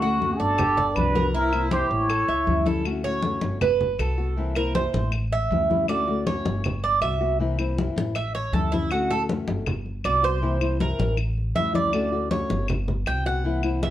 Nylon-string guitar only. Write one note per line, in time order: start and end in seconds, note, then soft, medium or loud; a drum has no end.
0.02 0.19 A3 medium
0.02 0.20 C#4 medium
0.02 0.20 F#4 medium
0.20 0.57 D3 soft
0.20 0.58 A3 medium
0.20 0.58 C#4 medium
0.20 0.58 F#4 medium
0.59 muted nylon-string guitar stroke medium
0.96 1.14 G3 soft
0.96 1.15 B3 medium
0.96 1.14 F#4 medium
1.15 1.34 B3 medium
1.15 1.33 F#4 medium
1.34 1.53 C3 medium
1.34 1.53 E3 medium
1.34 1.53 A#3 medium
1.34 1.52 C4 medium
1.34 1.52 E4 medium
1.53 1.71 E3 medium
1.53 1.71 A#3 medium
1.53 1.71 C4 medium
1.53 1.71 E4 medium
1.72 2.08 E3 soft
1.72 2.09 A#3 medium
1.72 2.10 C4 medium
1.72 2.09 E4 medium
2.10 muted nylon-string guitar stroke medium
2.48 2.66 E3 soft
2.48 2.66 G3 medium
2.48 2.66 C#4 medium
2.48 2.65 E4 medium
2.67 2.85 G3 medium
2.67 2.85 C#4 medium
2.67 2.85 E4 medium
2.85 3.04 D3 medium
2.85 3.04 A3 medium
2.85 3.04 C#4 medium
2.85 3.04 F#4 medium
3.05 3.23 A3 medium
3.05 3.23 C#4 medium
3.05 3.23 F#4 medium
3.24 3.61 D3 soft
3.24 3.61 A3 medium
3.24 3.61 C#4 medium
3.24 3.61 F#4 medium
3.61 muted nylon-string guitar stroke medium
3.99 4.17 G3 medium
3.99 4.18 B3 soft
3.99 4.17 F#4 medium
4.18 4.37 B3 medium
4.18 4.36 F#4 medium
4.37 4.55 C3 medium
4.37 4.55 E3 medium
4.37 4.56 A#3 medium
4.37 4.55 C4 medium
4.37 4.55 E4 medium
4.56 4.74 E3 medium
4.56 4.74 A#3 medium
4.56 4.74 C4 medium
4.56 4.74 E4 medium
4.75 5.12 E3 soft
4.75 5.12 A#3 soft
4.75 5.12 C4 medium
4.75 5.13 E4 soft
5.13 muted nylon-string guitar stroke medium
5.51 5.69 E3 medium
5.51 5.69 G3 medium
5.51 5.69 C#4 medium
5.51 5.69 E4 medium
5.70 5.88 G3 medium
5.70 5.88 C#4 medium
5.70 5.88 E4 medium
5.89 6.07 D3 medium
5.89 6.07 A3 medium
5.89 6.07 C#4 medium
5.89 6.06 F#4 medium
6.08 6.26 A3 medium
6.08 6.26 C#4 medium
6.08 6.26 F#4 medium
6.27 6.64 D3 soft
6.27 6.64 A3 soft
6.27 6.64 C#4 soft
6.27 6.64 F#4 medium
6.64 muted nylon-string guitar stroke medium
7.02 7.20 G3 soft
7.02 7.21 B3 medium
7.02 7.20 F#4 medium
7.21 7.40 B3 medium
7.21 7.39 F#4 medium
7.40 7.58 C3 medium
7.40 7.58 E3 medium
7.40 7.58 A#3 medium
7.40 7.58 C4 medium
7.40 7.57 E4 medium
7.59 7.77 E3 medium
7.59 7.77 A#3 medium
7.59 7.77 C4 medium
7.59 7.77 E4 medium
7.78 8.15 E3 medium
7.78 8.15 A#3 soft
7.78 8.16 C4 soft
7.78 8.16 E4 medium
8.17 muted nylon-string guitar stroke medium
8.54 8.72 E3 medium
8.54 8.72 G3 soft
8.54 8.72 C#4 medium
8.54 8.72 E4 medium
8.73 8.91 G3 medium
8.73 8.91 C#4 medium
8.73 8.91 E4 medium
8.92 9.10 D3 medium
8.92 9.10 A3 medium
8.92 9.09 C#4 medium
8.92 9.09 F#4 medium
9.10 9.28 A3 medium
9.10 9.29 C#4 medium
9.10 9.28 F#4 medium
9.29 9.66 D3 soft
9.29 9.66 A3 medium
9.29 9.66 C#4 medium
9.29 9.66 F#4 soft
9.67 muted nylon-string guitar stroke medium
10.04 10.23 G3 medium
10.04 10.23 B3 soft
10.04 10.22 F#4 medium
10.23 10.42 B3 medium
10.23 10.41 F#4 medium
10.41 10.60 C3 medium
10.41 10.60 E3 medium
10.41 10.60 A#3 medium
10.41 10.59 C4 medium
10.41 10.59 E4 medium
10.60 10.79 E3 medium
10.60 10.79 A#3 medium
10.60 10.79 C4 medium
10.60 10.79 E4 medium
10.80 11.15 E3 soft
10.80 11.16 A#3 medium
10.80 11.17 C4 medium
10.80 11.16 E4 medium
11.17 muted nylon-string guitar stroke medium
11.55 11.74 E3 soft
11.55 11.74 G3 medium
11.55 11.73 C#4 soft
11.55 11.72 E4 medium
11.73 11.93 G3 medium
11.73 11.93 C#4 medium
11.73 11.92 E4 medium
11.93 12.11 D3 medium
11.93 12.12 A3 medium
11.93 12.12 C#4 medium
11.93 12.11 F#4 medium
12.12 12.29 A3 medium
12.12 12.30 C#4 medium
12.12 12.30 F#4 medium
12.30 12.68 D3 soft
12.30 12.68 A3 medium
12.30 12.68 C#4 medium
12.30 12.68 F#4 medium
12.68 muted nylon-string guitar stroke medium
13.06 13.25 G3 soft
13.06 13.25 B3 medium
13.06 13.24 F#4 medium
13.26 13.45 B3 medium
13.26 13.44 F#4 medium
13.44 13.63 C3 medium
13.44 13.63 E3 medium
13.44 13.63 A#3 medium
13.44 13.63 C4 medium
13.44 13.62 E4 medium
13.64 13.81 E3 medium
13.64 13.82 A#3 medium
13.64 13.82 C4 medium
13.64 13.82 E4 medium
13.83 13.90 E3 soft
13.83 13.90 A#3 soft
13.83 13.90 C4 soft
13.83 13.90 E4 soft